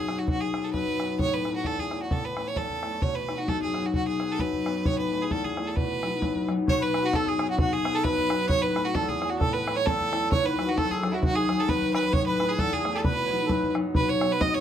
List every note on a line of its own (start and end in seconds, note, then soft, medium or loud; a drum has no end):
0.00 0.33 F#2 medium
0.00 0.20 G#4 medium
0.08 0.53 B3 soft
0.08 0.53 C#4 soft
0.08 0.54 D#4 soft
0.08 bodhran medium
0.19 0.28 F#4 medium
0.27 0.78 B2 medium
0.27 0.42 F#4 medium
0.27 bodhran medium
0.41 0.66 G#4 medium
0.53 0.99 B3 soft
0.53 1.00 C#4 soft
0.53 1.00 D#4 soft
0.53 bodhran medium
0.64 0.73 A4 medium
0.73 1.24 F#2 medium
0.73 1.16 B4 medium
0.73 bodhran medium
0.87 bodhran soft
1.00 3.27 B3 soft
1.00 1.45 C#4 soft
1.00 1.52 D#4 soft
1.00 bodhran soft
1.19 1.70 A2 medium
1.19 1.35 C#5 loud
1.19 bodhran medium
1.34 1.55 B4 medium
1.45 1.90 A3 soft
1.45 1.90 C#4 soft
1.45 1.91 E4 soft
1.45 bodhran soft
1.56 1.68 F#4 medium
1.64 2.16 E2 medium
1.64 1.81 A4 medium
1.64 bodhran medium
1.78 2.02 G#4 medium
1.78 bodhran soft
1.90 2.36 A3 soft
1.90 2.37 C#4 soft
1.90 2.37 E4 soft
1.90 bodhran medium
2.03 2.13 F#4 medium
2.10 2.61 A2 medium
2.10 2.26 A4 medium
2.10 bodhran medium
2.25 2.49 B4 medium
2.36 2.82 A3 soft
2.36 2.82 C#4 soft
2.36 2.83 E4 soft
2.36 bodhran medium
2.48 2.59 C#5 medium
2.56 3.07 E2 medium
2.56 3.04 A4 medium
2.56 bodhran medium
2.69 bodhran soft
2.83 5.11 A3 soft
2.83 3.28 C#4 soft
2.83 3.34 E4 medium
2.83 bodhran medium
3.02 3.53 B2 medium
3.02 3.16 C#5 medium
3.02 bodhran medium
3.15 3.39 B4 medium
3.28 3.73 B3 soft
3.28 3.73 C#4 soft
3.28 3.73 D#4 soft
3.28 bodhran soft
3.38 3.50 F#4 medium
3.47 3.99 F#2 medium
3.47 3.61 A4 medium
3.47 bodhran medium
3.61 3.87 G#4 medium
3.61 bodhran soft
3.73 4.19 B3 soft
3.73 4.20 C#4 soft
3.73 4.20 D#4 soft
3.73 bodhran soft
3.86 3.95 F#4 medium
3.93 4.44 B2 medium
3.93 4.07 F#4 medium
3.93 bodhran medium
4.08 4.33 G#4 medium
4.20 4.66 B3 soft
4.20 4.66 C#4 soft
4.20 4.67 D#4 soft
4.20 bodhran soft
4.32 4.42 A4 medium
4.39 4.90 F#2 medium
4.39 4.87 B4 medium
4.39 bodhran medium
4.52 bodhran soft
4.66 6.03 B3 soft
4.66 5.12 C#4 soft
4.66 5.19 D#4 soft
4.66 bodhran medium
4.85 5.36 A2 medium
4.85 4.98 C#5 loud
4.85 bodhran medium
4.98 5.23 B4 medium
5.12 5.56 A3 soft
5.12 5.57 C#4 soft
5.12 5.57 E4 soft
5.22 5.33 G#4 medium
5.31 5.81 E2 medium
5.31 5.46 A4 medium
5.31 bodhran medium
5.44 5.69 G#4 medium
5.44 bodhran soft
5.57 8.74 A3 soft
5.57 6.93 C#4 soft
5.57 6.10 E4 medium
5.57 bodhran medium
5.67 5.78 A4 medium
5.77 6.27 B2 medium
5.77 6.48 B4 medium
5.77 bodhran medium
6.03 6.47 F#3 soft
6.03 6.48 B3 soft
6.03 6.48 D#4 soft
6.03 bodhran medium
6.22 6.73 F#2 medium
6.22 bodhran medium
6.35 bodhran soft
6.48 6.72 F#3 soft
6.48 6.92 B3 soft
6.48 6.93 D#4 medium
6.48 bodhran soft
6.67 7.18 B2 medium
6.67 6.79 C#5 medium
6.67 6.84 C#5 loud
6.67 bodhran medium
6.80 7.04 B4 medium
6.80 7.07 B4 loud
6.93 7.38 B3 soft
6.93 7.39 C#4 soft
6.93 7.39 D#4 soft
6.93 bodhran medium
7.02 7.13 F#4 medium
7.02 7.17 F#4 medium
7.13 7.64 F#2 medium
7.13 7.25 A4 medium
7.13 7.30 A4 medium
7.13 bodhran medium
7.26 7.47 G#4 medium
7.26 7.50 G#4 medium
7.26 bodhran soft
7.38 7.83 B3 soft
7.38 7.83 C#4 soft
7.38 7.84 D#4 medium
7.38 bodhran medium
7.49 7.57 F#4 medium
7.49 7.58 F#4 medium
7.58 8.09 B2 medium
7.58 7.71 F#4 medium
7.58 7.74 F#4 medium
7.58 bodhran medium
7.72 7.93 G#4 medium
7.72 7.96 G#4 medium
7.83 8.29 B3 soft
7.83 8.29 C#4 soft
7.83 8.29 D#4 soft
7.83 bodhran medium
7.94 8.03 A4 medium
7.94 8.05 A4 medium
8.03 8.55 F#2 medium
8.03 8.48 B4 loud
8.03 8.51 B4 medium
8.03 bodhran medium
8.17 bodhran soft
8.29 11.40 B3 medium
8.29 8.75 C#4 soft
8.29 8.81 D#4 medium
8.29 bodhran medium
8.49 9.00 A2 medium
8.49 8.63 C#5 loud
8.49 bodhran medium
8.62 8.86 B4 loud
8.62 8.84 B4 medium
8.74 9.19 A3 soft
8.74 9.20 C#4 soft
8.74 9.20 E4 medium
8.74 bodhran medium
8.85 8.95 F#4 medium
8.85 8.96 F#4 medium
8.93 9.45 E2 medium
8.93 9.10 A4 medium
8.93 9.09 A4 medium
8.93 bodhran medium
9.08 9.29 G#4 medium
9.08 9.31 G#4 medium
9.08 bodhran soft
9.19 9.65 A3 soft
9.19 9.65 C#4 soft
9.19 9.66 E4 medium
9.19 bodhran medium
9.30 9.38 F#4 medium
9.30 9.40 F#4 medium
9.39 9.91 A2 medium
9.39 9.54 A4 medium
9.39 bodhran medium
9.53 9.78 B4 medium
9.53 9.74 B4 medium
9.65 10.12 A3 soft
9.65 10.12 C#4 soft
9.65 10.13 E4 medium
9.65 bodhran medium
9.75 9.86 C#5 medium
9.75 9.88 C#5 loud
9.85 10.36 E2 medium
9.85 10.32 A4 medium
9.85 10.31 A4 loud
9.85 bodhran medium
10.00 bodhran soft
10.12 12.39 A3 soft
10.12 10.57 C#4 soft
10.12 10.37 E4 medium
10.12 bodhran medium
10.31 10.75 D#2 medium
10.31 10.45 C#5 medium
10.31 10.47 C#5 loud
10.31 bodhran medium
10.44 10.68 B4 medium
10.44 10.70 B4 medium
10.57 11.01 F#3 soft
10.57 11.02 C#4 soft
10.57 11.03 D#4 soft
10.57 bodhran medium
10.66 10.76 F#4 medium
10.66 10.79 F#4 medium
10.76 11.20 D#2 medium
10.76 11.14 A4 medium
10.76 10.92 A4 loud
10.76 bodhran medium
10.91 11.13 G#4 medium
10.91 bodhran soft
11.02 11.48 F#3 medium
11.02 11.49 C#4 medium
11.02 11.50 D#4 medium
11.02 bodhran medium
11.11 11.16 E4 medium
11.11 11.20 F#4 medium
11.11 11.23 F#4 medium
11.22 11.67 D#2 medium
11.22 11.34 F#4 medium
11.22 11.37 F#4 loud
11.22 bodhran medium
11.36 11.69 G#4 medium
11.36 11.61 G#4 medium
11.49 11.93 F#3 soft
11.49 11.94 C#4 soft
11.49 11.94 D#4 medium
11.49 bodhran medium
11.60 11.70 A4 medium
11.68 12.18 D#2 medium
11.68 11.92 B4 medium
11.68 11.93 B4 medium
11.68 bodhran medium
11.82 bodhran soft
11.93 12.18 F#3 soft
11.93 12.40 C#4 soft
11.93 12.47 D#4 medium
11.93 12.13 B4 medium
11.93 12.15 B4 medium
11.93 bodhran medium
12.13 12.64 A2 medium
12.13 12.26 C#5 loud
12.13 12.19 C#5 medium
12.13 bodhran medium
12.26 12.50 B4 medium
12.26 12.60 B4 medium
12.39 12.83 A3 soft
12.39 12.84 C#4 soft
12.39 12.85 E4 medium
12.39 bodhran medium
12.49 12.61 G#4 medium
12.58 13.09 E2 medium
12.58 12.72 A4 medium
12.58 12.74 A4 loud
12.58 bodhran medium
12.72 12.96 G#4 medium
12.72 12.97 G#4 medium
12.72 bodhran soft
12.84 14.60 A3 medium
12.84 14.60 C#4 soft
12.84 13.36 E4 medium
12.84 bodhran medium
12.94 13.05 A4 medium
12.94 13.04 A4 medium
13.04 13.55 B2 medium
13.04 13.24 B4 medium
13.04 13.72 B4 medium
13.04 bodhran medium
13.26 13.74 F#3 soft
13.26 13.31 C#5 soft
13.30 13.75 B3 soft
13.30 13.76 D#4 medium
13.30 13.45 B4 medium
13.46 14.00 F#2 medium
13.46 13.50 A4 soft
13.46 13.74 B4 medium
13.46 bodhran medium
13.63 bodhran soft
13.75 14.00 F#3 medium
13.75 14.21 B3 soft
13.75 14.21 D#4 medium
13.75 bodhran medium
13.95 14.46 B2 medium
13.95 14.09 B4 medium
13.95 14.11 B4 medium
13.95 bodhran medium
14.08 14.32 C#5 medium
14.08 14.33 C#5 medium
14.20 14.60 F#3 soft
14.20 14.60 B3 soft
14.20 14.60 D#4 soft
14.20 bodhran medium
14.31 14.41 B4 medium
14.31 14.43 B4 medium
14.40 14.60 F#2 medium
14.40 14.53 D#5 medium
14.40 14.56 D#5 medium
14.40 bodhran medium
14.54 14.60 C#5 medium